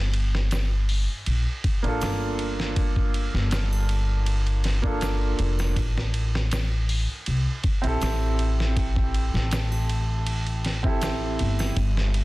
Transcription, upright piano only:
0, 0, Header, 1, 2, 480
1, 0, Start_track
1, 0, Tempo, 750000
1, 1773, Time_signature, 4, 2, 24, 8
1, 7834, End_track
2, 0, Start_track
2, 0, Title_t, "Upright piano"
2, 0, Program_c, 0, 0
2, 1168, Note_on_c, 0, 58, 83
2, 1179, Note_on_c, 0, 62, 79
2, 1190, Note_on_c, 0, 65, 81
2, 1201, Note_on_c, 0, 69, 89
2, 3063, Note_off_c, 0, 58, 0
2, 3069, Note_off_c, 0, 62, 0
2, 3074, Note_off_c, 0, 65, 0
2, 3080, Note_off_c, 0, 69, 0
2, 3085, Note_on_c, 0, 58, 75
2, 3096, Note_on_c, 0, 62, 70
2, 3107, Note_on_c, 0, 65, 66
2, 3116, Note_on_c, 0, 69, 83
2, 3672, Note_off_c, 0, 58, 0
2, 3678, Note_off_c, 0, 62, 0
2, 3683, Note_off_c, 0, 65, 0
2, 3688, Note_off_c, 0, 69, 0
2, 5003, Note_on_c, 0, 60, 87
2, 5014, Note_on_c, 0, 64, 76
2, 5026, Note_on_c, 0, 67, 74
2, 5037, Note_on_c, 0, 69, 94
2, 6901, Note_off_c, 0, 60, 0
2, 6906, Note_off_c, 0, 64, 0
2, 6913, Note_off_c, 0, 67, 0
2, 6918, Note_off_c, 0, 69, 0
2, 6931, Note_on_c, 0, 60, 70
2, 6942, Note_on_c, 0, 64, 71
2, 6953, Note_on_c, 0, 67, 63
2, 6962, Note_on_c, 0, 69, 80
2, 7515, Note_off_c, 0, 60, 0
2, 7521, Note_off_c, 0, 64, 0
2, 7526, Note_off_c, 0, 67, 0
2, 7531, Note_off_c, 0, 69, 0
2, 7834, End_track
0, 0, End_of_file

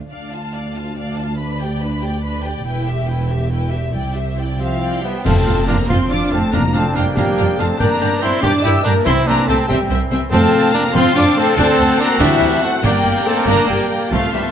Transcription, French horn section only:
0, 0, Header, 1, 2, 480
1, 0, Start_track
1, 0, Tempo, 424028
1, 136, Time_signature, 6, 3, 24, 8
1, 3973, Tempo, 432588
1, 7333, Tempo, 419874
1, 14053, Tempo, 426743
1, 16413, End_track
2, 0, Start_track
2, 0, Title_t, "French horn section"
2, 0, Program_c, 0, 60
2, 5172, Note_on_c, 0, 65, 66
2, 5631, Note_off_c, 0, 65, 0
2, 5664, Note_on_c, 0, 67, 65
2, 5775, Note_off_c, 0, 67, 0
2, 5908, Note_on_c, 0, 69, 89
2, 6376, Note_off_c, 0, 69, 0
2, 6377, Note_on_c, 0, 70, 88
2, 6609, Note_on_c, 0, 72, 83
2, 6614, Note_off_c, 0, 70, 0
2, 6844, Note_on_c, 0, 74, 80
2, 6849, Note_off_c, 0, 72, 0
2, 7087, Note_on_c, 0, 69, 88
2, 7089, Note_off_c, 0, 74, 0
2, 7327, Note_on_c, 0, 70, 90
2, 7328, Note_off_c, 0, 69, 0
2, 7571, Note_off_c, 0, 70, 0
2, 7584, Note_on_c, 0, 69, 87
2, 7793, Note_on_c, 0, 67, 93
2, 7816, Note_off_c, 0, 69, 0
2, 8008, Note_off_c, 0, 67, 0
2, 8022, Note_on_c, 0, 67, 100
2, 8511, Note_off_c, 0, 67, 0
2, 8521, Note_on_c, 0, 69, 86
2, 8766, Note_on_c, 0, 70, 105
2, 8771, Note_off_c, 0, 69, 0
2, 9231, Note_on_c, 0, 72, 104
2, 9246, Note_off_c, 0, 70, 0
2, 9476, Note_on_c, 0, 74, 105
2, 9487, Note_off_c, 0, 72, 0
2, 9712, Note_on_c, 0, 76, 106
2, 9725, Note_off_c, 0, 74, 0
2, 9957, Note_on_c, 0, 70, 118
2, 9968, Note_off_c, 0, 76, 0
2, 10211, Note_on_c, 0, 72, 110
2, 10212, Note_off_c, 0, 70, 0
2, 10457, Note_on_c, 0, 70, 113
2, 10460, Note_off_c, 0, 72, 0
2, 10686, Note_on_c, 0, 69, 110
2, 10698, Note_off_c, 0, 70, 0
2, 10924, Note_on_c, 0, 67, 112
2, 10937, Note_off_c, 0, 69, 0
2, 11170, Note_off_c, 0, 67, 0
2, 11635, Note_on_c, 0, 69, 113
2, 12092, Note_off_c, 0, 69, 0
2, 12127, Note_on_c, 0, 70, 118
2, 12372, Note_off_c, 0, 70, 0
2, 12382, Note_on_c, 0, 72, 121
2, 12615, Note_off_c, 0, 72, 0
2, 12625, Note_on_c, 0, 74, 127
2, 12861, Note_off_c, 0, 74, 0
2, 12861, Note_on_c, 0, 69, 127
2, 13095, Note_off_c, 0, 69, 0
2, 13108, Note_on_c, 0, 69, 127
2, 13570, Note_off_c, 0, 69, 0
2, 13581, Note_on_c, 0, 70, 124
2, 13816, Note_off_c, 0, 70, 0
2, 13819, Note_on_c, 0, 64, 121
2, 14294, Note_off_c, 0, 64, 0
2, 14294, Note_on_c, 0, 66, 100
2, 14530, Note_off_c, 0, 66, 0
2, 14549, Note_on_c, 0, 67, 108
2, 15005, Note_off_c, 0, 67, 0
2, 15008, Note_on_c, 0, 69, 114
2, 15245, Note_off_c, 0, 69, 0
2, 15249, Note_on_c, 0, 70, 109
2, 15485, Note_off_c, 0, 70, 0
2, 15486, Note_on_c, 0, 67, 90
2, 15696, Note_off_c, 0, 67, 0
2, 15710, Note_on_c, 0, 67, 94
2, 15944, Note_on_c, 0, 65, 95
2, 15953, Note_off_c, 0, 67, 0
2, 16184, Note_on_c, 0, 64, 73
2, 16198, Note_off_c, 0, 65, 0
2, 16300, Note_off_c, 0, 64, 0
2, 16413, End_track
0, 0, End_of_file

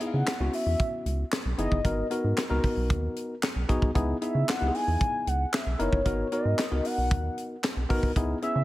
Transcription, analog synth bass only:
0, 0, Header, 1, 2, 480
1, 0, Start_track
1, 0, Tempo, 526316
1, 1685, Time_signature, 4, 2, 24, 8
1, 7882, End_track
2, 0, Start_track
2, 0, Title_t, "Analog synth bass"
2, 0, Program_c, 0, 38
2, 124, Note_on_c, 0, 49, 96
2, 209, Note_off_c, 0, 49, 0
2, 364, Note_on_c, 0, 37, 90
2, 448, Note_off_c, 0, 37, 0
2, 603, Note_on_c, 0, 40, 103
2, 688, Note_off_c, 0, 40, 0
2, 963, Note_on_c, 0, 37, 88
2, 1131, Note_off_c, 0, 37, 0
2, 1325, Note_on_c, 0, 35, 99
2, 1409, Note_off_c, 0, 35, 0
2, 1444, Note_on_c, 0, 30, 88
2, 1528, Note_off_c, 0, 30, 0
2, 1565, Note_on_c, 0, 31, 103
2, 1649, Note_off_c, 0, 31, 0
2, 1685, Note_on_c, 0, 32, 110
2, 1853, Note_off_c, 0, 32, 0
2, 2044, Note_on_c, 0, 44, 99
2, 2128, Note_off_c, 0, 44, 0
2, 2284, Note_on_c, 0, 37, 96
2, 2368, Note_off_c, 0, 37, 0
2, 2524, Note_on_c, 0, 35, 86
2, 2645, Note_on_c, 0, 39, 99
2, 2659, Note_off_c, 0, 35, 0
2, 2813, Note_off_c, 0, 39, 0
2, 3244, Note_on_c, 0, 35, 86
2, 3328, Note_off_c, 0, 35, 0
2, 3367, Note_on_c, 0, 35, 92
2, 3450, Note_off_c, 0, 35, 0
2, 3485, Note_on_c, 0, 36, 92
2, 3569, Note_off_c, 0, 36, 0
2, 3605, Note_on_c, 0, 37, 111
2, 3773, Note_off_c, 0, 37, 0
2, 3964, Note_on_c, 0, 49, 100
2, 4048, Note_off_c, 0, 49, 0
2, 4209, Note_on_c, 0, 37, 92
2, 4292, Note_off_c, 0, 37, 0
2, 4447, Note_on_c, 0, 40, 102
2, 4530, Note_off_c, 0, 40, 0
2, 4806, Note_on_c, 0, 37, 84
2, 4973, Note_off_c, 0, 37, 0
2, 5164, Note_on_c, 0, 35, 93
2, 5249, Note_off_c, 0, 35, 0
2, 5288, Note_on_c, 0, 30, 92
2, 5371, Note_off_c, 0, 30, 0
2, 5403, Note_on_c, 0, 31, 96
2, 5488, Note_off_c, 0, 31, 0
2, 5523, Note_on_c, 0, 32, 106
2, 5692, Note_off_c, 0, 32, 0
2, 5883, Note_on_c, 0, 44, 102
2, 5968, Note_off_c, 0, 44, 0
2, 6124, Note_on_c, 0, 37, 93
2, 6209, Note_off_c, 0, 37, 0
2, 6364, Note_on_c, 0, 35, 91
2, 6485, Note_on_c, 0, 39, 95
2, 6499, Note_off_c, 0, 35, 0
2, 6653, Note_off_c, 0, 39, 0
2, 7081, Note_on_c, 0, 35, 85
2, 7166, Note_off_c, 0, 35, 0
2, 7206, Note_on_c, 0, 35, 81
2, 7289, Note_off_c, 0, 35, 0
2, 7322, Note_on_c, 0, 36, 88
2, 7407, Note_off_c, 0, 36, 0
2, 7442, Note_on_c, 0, 37, 95
2, 7611, Note_off_c, 0, 37, 0
2, 7801, Note_on_c, 0, 49, 103
2, 7882, Note_off_c, 0, 49, 0
2, 7882, End_track
0, 0, End_of_file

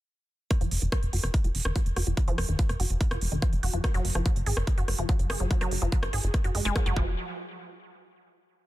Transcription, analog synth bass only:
0, 0, Header, 1, 2, 480
1, 0, Start_track
1, 0, Tempo, 416667
1, 583, Time_signature, 4, 2, 24, 8
1, 9984, End_track
2, 0, Start_track
2, 0, Title_t, "Analog synth bass"
2, 0, Program_c, 0, 38
2, 703, Note_on_c, 0, 29, 87
2, 777, Note_off_c, 0, 29, 0
2, 823, Note_on_c, 0, 29, 99
2, 897, Note_off_c, 0, 29, 0
2, 943, Note_on_c, 0, 29, 88
2, 1017, Note_off_c, 0, 29, 0
2, 1183, Note_on_c, 0, 29, 88
2, 1257, Note_off_c, 0, 29, 0
2, 1303, Note_on_c, 0, 30, 100
2, 1377, Note_off_c, 0, 30, 0
2, 1423, Note_on_c, 0, 29, 95
2, 1497, Note_off_c, 0, 29, 0
2, 1663, Note_on_c, 0, 29, 90
2, 1737, Note_off_c, 0, 29, 0
2, 1783, Note_on_c, 0, 29, 101
2, 1857, Note_off_c, 0, 29, 0
2, 1903, Note_on_c, 0, 29, 93
2, 1977, Note_off_c, 0, 29, 0
2, 2143, Note_on_c, 0, 29, 85
2, 2217, Note_off_c, 0, 29, 0
2, 2263, Note_on_c, 0, 29, 94
2, 2337, Note_off_c, 0, 29, 0
2, 2383, Note_on_c, 0, 29, 93
2, 2457, Note_off_c, 0, 29, 0
2, 2623, Note_on_c, 0, 29, 86
2, 2697, Note_off_c, 0, 29, 0
2, 2742, Note_on_c, 0, 29, 97
2, 2817, Note_off_c, 0, 29, 0
2, 2863, Note_on_c, 0, 29, 86
2, 2937, Note_off_c, 0, 29, 0
2, 3103, Note_on_c, 0, 29, 86
2, 3177, Note_off_c, 0, 29, 0
2, 3223, Note_on_c, 0, 30, 103
2, 3297, Note_off_c, 0, 30, 0
2, 3343, Note_on_c, 0, 29, 94
2, 3417, Note_off_c, 0, 29, 0
2, 3583, Note_on_c, 0, 29, 89
2, 3657, Note_off_c, 0, 29, 0
2, 3703, Note_on_c, 0, 29, 99
2, 3777, Note_off_c, 0, 29, 0
2, 3823, Note_on_c, 0, 29, 91
2, 3897, Note_off_c, 0, 29, 0
2, 4063, Note_on_c, 0, 29, 89
2, 4137, Note_off_c, 0, 29, 0
2, 4183, Note_on_c, 0, 29, 96
2, 4257, Note_off_c, 0, 29, 0
2, 4303, Note_on_c, 0, 29, 89
2, 4377, Note_off_c, 0, 29, 0
2, 4543, Note_on_c, 0, 30, 90
2, 4617, Note_off_c, 0, 30, 0
2, 4663, Note_on_c, 0, 30, 100
2, 4737, Note_off_c, 0, 30, 0
2, 4783, Note_on_c, 0, 30, 90
2, 4857, Note_off_c, 0, 30, 0
2, 5023, Note_on_c, 0, 30, 87
2, 5097, Note_off_c, 0, 30, 0
2, 5143, Note_on_c, 0, 32, 98
2, 5217, Note_off_c, 0, 32, 0
2, 5263, Note_on_c, 0, 30, 92
2, 5337, Note_off_c, 0, 30, 0
2, 5503, Note_on_c, 0, 30, 89
2, 5577, Note_off_c, 0, 30, 0
2, 5623, Note_on_c, 0, 30, 97
2, 5697, Note_off_c, 0, 30, 0
2, 5743, Note_on_c, 0, 30, 94
2, 5817, Note_off_c, 0, 30, 0
2, 5983, Note_on_c, 0, 30, 88
2, 6057, Note_off_c, 0, 30, 0
2, 6103, Note_on_c, 0, 30, 97
2, 6177, Note_off_c, 0, 30, 0
2, 6223, Note_on_c, 0, 30, 92
2, 6297, Note_off_c, 0, 30, 0
2, 6463, Note_on_c, 0, 30, 88
2, 6537, Note_off_c, 0, 30, 0
2, 6583, Note_on_c, 0, 30, 105
2, 6657, Note_off_c, 0, 30, 0
2, 6703, Note_on_c, 0, 30, 90
2, 6777, Note_off_c, 0, 30, 0
2, 6943, Note_on_c, 0, 30, 84
2, 7017, Note_off_c, 0, 30, 0
2, 7063, Note_on_c, 0, 32, 97
2, 7137, Note_off_c, 0, 32, 0
2, 7183, Note_on_c, 0, 30, 93
2, 7257, Note_off_c, 0, 30, 0
2, 7423, Note_on_c, 0, 30, 87
2, 7497, Note_off_c, 0, 30, 0
2, 7543, Note_on_c, 0, 30, 102
2, 7617, Note_off_c, 0, 30, 0
2, 7663, Note_on_c, 0, 30, 92
2, 7737, Note_off_c, 0, 30, 0
2, 7903, Note_on_c, 0, 30, 91
2, 7977, Note_off_c, 0, 30, 0
2, 8023, Note_on_c, 0, 29, 92
2, 8246, Note_off_c, 0, 29, 0
2, 9984, End_track
0, 0, End_of_file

